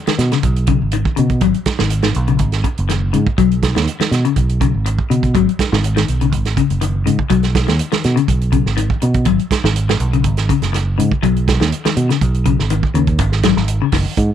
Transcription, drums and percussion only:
0.07 snare, closed hi-hat
0.19 snare, closed hi-hat
0.32 snare, closed hi-hat
0.43 kick, closed hi-hat
0.56 closed hi-hat
0.67 kick, closed hi-hat
0.92 closed hi-hat
1.05 kick
1.17 closed hi-hat
1.30 kick, closed hi-hat
1.41 kick, closed hi-hat
1.54 closed hi-hat
1.66 kick, snare, closed hi-hat
1.79 snare
1.90 closed hi-hat
2.02 snare, closed hi-hat
2.14 closed hi-hat
2.27 closed hi-hat
2.39 kick, closed hi-hat
2.52 snare, closed hi-hat
2.64 kick, closed hi-hat
2.78 closed hi-hat
2.89 snare, closed hi-hat
3.13 closed hi-hat
3.27 kick
3.38 kick, closed hi-hat
3.51 closed hi-hat
3.63 kick, snare, closed hi-hat
3.76 snare, closed hi-hat
3.87 closed hi-hat
4.00 snare, closed hi-hat
4.12 snare, closed hi-hat
4.25 closed hi-hat
4.36 kick, closed hi-hat
4.49 closed hi-hat
4.61 kick, closed hi-hat
4.86 closed hi-hat
4.99 kick
5.11 closed hi-hat
5.23 kick, closed hi-hat
5.35 kick, closed hi-hat
5.49 closed hi-hat
5.59 kick, snare, closed hi-hat
5.73 snare
5.84 closed hi-hat
5.97 snare, closed hi-hat
6.08 closed hi-hat
6.21 closed hi-hat
6.33 kick, closed hi-hat
6.45 snare, closed hi-hat
6.57 kick, closed hi-hat
6.70 closed hi-hat
6.81 closed hi-hat
7.07 closed hi-hat
7.19 kick
7.30 kick, closed hi-hat
7.43 snare, closed hi-hat
7.55 kick, snare, closed hi-hat
7.68 snare, closed hi-hat
7.79 closed hi-hat
7.92 snare, closed hi-hat
8.04 snare, closed hi-hat
8.17 closed hi-hat
8.28 kick, closed hi-hat
8.41 closed hi-hat
8.52 kick, closed hi-hat
8.66 snare
8.77 closed hi-hat
8.90 kick
9.02 closed hi-hat
9.14 kick, closed hi-hat
9.25 kick, closed hi-hat
9.39 closed hi-hat
9.51 kick, snare, closed hi-hat
9.65 snare
9.76 closed hi-hat
9.89 snare, closed hi-hat
10.00 closed hi-hat
10.13 closed hi-hat
10.24 kick, closed hi-hat
10.37 snare, closed hi-hat
10.49 kick, closed hi-hat
10.62 snare, closed hi-hat
10.74 snare, closed hi-hat
11.00 closed hi-hat
11.12 kick
11.23 kick, closed hi-hat
11.36 closed hi-hat
11.48 kick, snare, closed hi-hat
11.61 snare, closed hi-hat
11.72 closed hi-hat
11.85 snare, closed hi-hat
11.97 closed hi-hat
12.10 snare, closed hi-hat
12.21 kick, closed hi-hat
12.34 closed hi-hat
12.45 kick, closed hi-hat
12.59 snare
12.70 closed hi-hat
12.83 kick
12.95 closed hi-hat
13.07 kick, closed hi-hat
13.19 kick, closed hi-hat
13.32 snare
13.43 kick, snare, closed hi-hat
13.57 snare
13.68 closed hi-hat
13.92 kick, snare, open hi-hat
14.17 kick, closed hi-hat

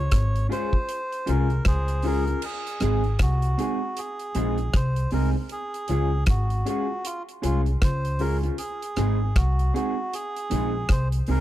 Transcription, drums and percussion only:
0.11 kick, cross-stick, closed hi-hat
0.36 closed hi-hat
0.52 closed hi-hat
0.73 kick
0.89 closed hi-hat
1.12 closed hi-hat
1.27 closed hi-hat
1.50 closed hi-hat
1.65 kick, cross-stick, closed hi-hat
1.88 closed hi-hat
2.02 open hi-hat
2.27 closed hi-hat
2.42 crash
2.67 closed hi-hat
2.80 cross-stick, closed hi-hat
3.04 closed hi-hat
3.19 kick, cross-stick, closed hi-hat
3.42 closed hi-hat
3.59 closed hi-hat
3.97 closed hi-hat
4.19 closed hi-hat
4.35 closed hi-hat
4.58 closed hi-hat
4.74 kick, cross-stick, closed hi-hat
4.96 closed hi-hat
5.11 open hi-hat
5.49 closed hi-hat
5.74 closed hi-hat
5.88 closed hi-hat
6.26 kick, cross-stick, closed hi-hat
6.50 closed hi-hat
6.67 closed hi-hat
7.05 closed hi-hat
7.29 closed hi-hat
7.43 closed hi-hat
7.66 closed hi-hat
7.82 kick, cross-stick, closed hi-hat
8.05 closed hi-hat
8.19 open hi-hat
8.43 closed hi-hat
8.58 closed hi-hat
8.82 closed hi-hat
8.96 cross-stick, closed hi-hat
9.36 kick, cross-stick, closed hi-hat
9.59 closed hi-hat
9.76 closed hi-hat
10.13 closed hi-hat
10.36 closed hi-hat
10.51 closed hi-hat
10.89 kick, cross-stick, closed hi-hat
11.12 closed hi-hat
11.27 open hi-hat

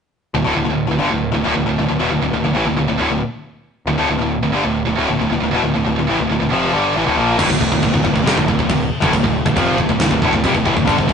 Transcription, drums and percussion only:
7.39 kick, crash
7.50 kick
7.61 kick
7.72 kick
7.83 kick, crash
7.94 kick
8.05 kick
8.16 kick
8.27 snare, crash
8.38 kick
8.48 kick
8.59 kick
8.69 kick, crash
9.02 kick
9.13 kick, crash
9.24 kick
9.46 kick
9.57 kick, crash
9.78 kick
9.89 kick
10.00 snare, crash
10.11 kick
10.22 kick
10.33 kick
10.44 kick, crash
10.55 kick
10.66 kick
10.77 kick
10.88 kick, crash
10.98 kick
11.09 kick

